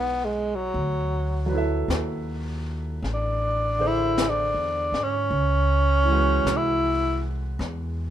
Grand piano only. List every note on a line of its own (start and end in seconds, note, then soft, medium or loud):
0.00 0.74 G#3 soft
0.00 0.75 B3 soft
0.00 0.75 C#4 soft
0.00 0.72 D#4 soft
0.00 0.76 E4 soft
0.00 0.77 F#4 soft
0.00 0.76 G#4 soft
1.46 5.29 F#3 medium
1.46 5.31 B4 medium
1.52 5.32 E4 medium
1.52 5.33 A4 soft
1.57 5.35 E5 medium
3.79 5.31 D3 soft
3.79 5.32 G#4 soft
3.79 5.33 C5 medium
6.04 8.10 E3 medium
6.04 8.10 G#3 soft
6.09 8.10 F#4 soft
6.09 8.10 C#5 soft
6.14 8.10 B4 medium